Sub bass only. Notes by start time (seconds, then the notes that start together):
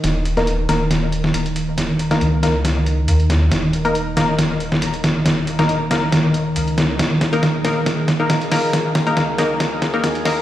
0.04 D#1
0.69 D#1
1.34 D#1
2.21 C#2
3.08 D#2
3.52 D#1
4.17 D#1
4.82 D#1
5.69 D#1
6.56 C#2
6.99 D#1
7.64 D#1
8.30 D#1
9.17 C#2
10.04 D#2